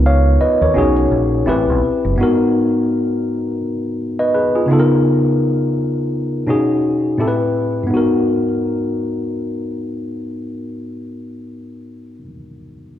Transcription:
Already playing: C#2 B3 D#4 F4 G#4 A#4 B4
0.06 C#5 F5
0.41 B4 D#5, muted fingered electric bass stroke
0.61 D#2 A#4 C#5
0.74 B1 C#4 D#4 F#4
0.78 G#4
1.12 A#1
1.46 A1 C4 E4 G4 B4
1.70 B1
2.05 F#1
2.16 G#2 B3 D#4
2.21 F#4 A#4
4.19 B4 D#5
4.34 G#4 B4
4.55 F4 G#4
4.66 C#3 B3 D#4
4.71 F4 A4
4.80 A#4
6.47 B2 C#4 D#4 F#4 G#4
7.18 A2 C4 E4 G4 A4
7.28 B4
7.83 G#2 B3
7.91 D#4 F#4
7.97 A#4

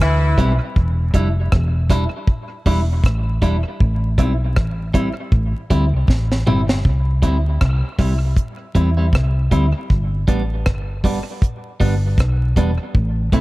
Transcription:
0.00 D2 E3 E4, cross-stick, hi-hat pedal
0.38 B1 G3 C4 E4, kick, closed hi-hat
0.76 E1, kick
1.14 F1 G3 D4 E4, kick, closed hi-hat
1.52 E1, kick, cross-stick
1.90 G3 D4 E4, kick, cross-stick, closed hi-hat
2.27 kick
2.66 E1 G3 D4 E4, kick, open hi-hat
3.04 A1, kick, cross-stick, hi-hat pedal
3.42 E1 G3 D4 E4, kick, closed hi-hat
3.80 A1, kick
4.18 B1 G3 C4 E4, kick, closed hi-hat
4.56 A1, kick, cross-stick
4.94 G3 C4 E4, kick, closed hi-hat
5.32 A1, kick
5.70 D2 G3 C4 E4, kick, closed hi-hat
5.93 C2
6.08 A1, kick, snare
6.32 snare
6.47 G1 G3 C4 E4, mid tom
6.69 snare
6.85 C2, kick
7.22 D2 G3 C4 E4, kick, closed hi-hat
7.61 C2, kick, cross-stick
7.99 C2 G3 C4 E4, kick, cross-stick, open hi-hat
8.36 kick, hi-hat pedal
8.75 E2 G3 C4 E4, kick, closed hi-hat
8.97 G3 C4 E4
9.13 C2, kick, cross-stick
9.51 D2 G3 C4 E4, kick, closed hi-hat
9.90 G1, kick
10.28 A1 G3 B3 D4, kick, closed hi-hat
10.66 G1, kick, cross-stick
11.04 G3 B3 D4, kick, open hi-hat
11.42 kick, hi-hat pedal
11.80 G1 G3 B3 D4, kick, open hi-hat
12.18 B1, kick, cross-stick, hi-hat pedal
12.56 E1 G3 B3 D4, kick, closed hi-hat
12.95 A1, kick
13.32 B1 A3 C4 E4, kick, closed hi-hat

